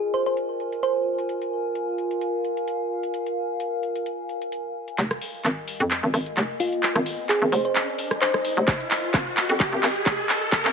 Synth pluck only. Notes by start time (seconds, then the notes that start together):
Already playing: G#4
0.14 C5
0.26 C5
0.83 C5
6.60 F4
7.29 G#4
7.52 C5
7.65 C5
8.22 C5